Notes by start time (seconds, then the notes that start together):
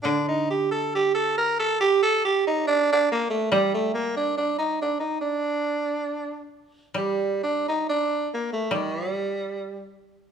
0.03 D3 D4
0.28 D#4
0.50 G4
0.71 A4
0.95 G4
1.14 A4
1.38 A#4
1.59 A4
1.81 G4
2.03 A4
2.25 G4
2.47 D#4
2.67 D4
2.92 D4
3.12 A#3
3.30 A3
3.51 G3
3.74 A3
3.94 A#3
4.17 D4
4.37 D4
4.59 D#4
4.82 D4
5.00 D#4
5.21 D4
6.94 G3
7.43 D4
7.68 D#4
7.89 D4
8.34 A#3
8.53 A3
8.71 D#3 G3
9.13 G3